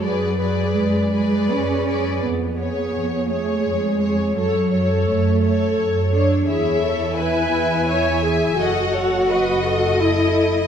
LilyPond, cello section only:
\new Staff \with { instrumentName = "Cello section" } { \time 3/4 \key fis \minor \tempo 4 = 84 fis4 gis4 cis'4 | b4. a8 gis4 | fis4 a4 r8 d'8 | \key cis \minor e'2. |
fis'2 e'4 | }